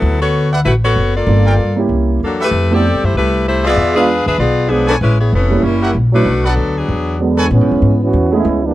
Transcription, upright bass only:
0.02 D2
0.65 A1
0.96 F#1
1.27 G1
1.59 G2
1.89 C2
2.20 E2
2.51 F2
2.94 G2
3.03 F#2
3.14 C2
3.76 E2
4.26 D#2
4.38 B1
5.01 A1
5.33 F1
5.63 F#1
5.94 A#1
6.25 B1
6.57 D2
6.88 E2
7.51 A2
7.61 G#2
7.71 E2
7.82 G#2
8.13 E2
8.45 C#2

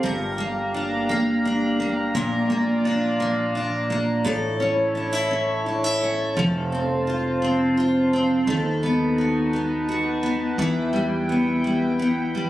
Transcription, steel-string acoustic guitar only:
Already playing: C4 F4
0.03 G2 A#4
0.38 A#3
0.74 D4
1.09 A#3
1.45 D4
1.80 A#3
2.15 A#2 A#4
2.50 A#3
2.85 D4
3.20 A#3
3.55 D4
3.90 A#3
4.25 A2 A4
4.60 C#4
4.95 D4
5.13 E4
5.31 C#4
5.66 D4
5.84 E4
6.01 C#4
6.37 F3 A4
6.72 C4
7.07 F4
7.42 C4
7.77 F4
8.13 C4
8.47 D#3 A4
8.83 B3
9.18 F#4
9.53 B3
9.89 F#4
10.23 B3
10.59 E3 E4
10.93 G3
11.29 B3
11.64 G3
11.99 B3
12.35 G3

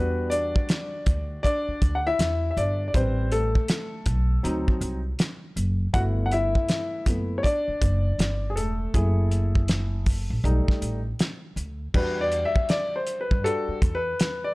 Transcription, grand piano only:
Already playing: G3 B3 D4 F#4 B4
0.30 D4 D5
1.43 D4 D5
1.95 F#5
2.07 E4 E5
2.51 E5
2.57 D4 D5
2.88 D5
2.94 G3 C4 B4 C5
3.32 A3 A4
4.43 F#3 C4 D#4
5.93 A3 B3 E4 F#4 F#5
6.26 F#5
6.32 E4 E5
7.07 A3 B3 E4
7.38 C#5
7.43 D4 D5
8.50 G#4
8.56 A3 A4
8.95 A3 E4 G#4
10.44 G3 A3 D#4
11.94 G3 D4 F#4 B4
12.21 D5
12.45 E5
12.70 D5
12.96 C5
13.21 B4
13.44 G3 D4 F#4 A4
13.95 B4
14.44 D5

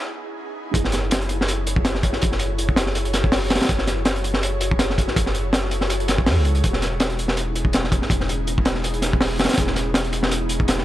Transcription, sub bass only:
0.74 F#1
2.23 F#1
3.69 F#1
5.16 F#1
6.27 F#2
6.36 C#2
6.64 E1
8.10 E1
9.58 E1

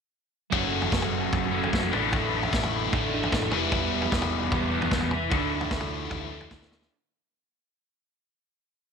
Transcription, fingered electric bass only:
0.53 F#1
0.92 F#1
1.33 F#1
1.73 F#1
1.93 A1
2.53 A1
2.93 A1
3.33 A1
3.53 E1
4.13 E1
4.52 E1
4.91 E1
5.32 D2
5.71 D2
6.11 D2
6.51 D2

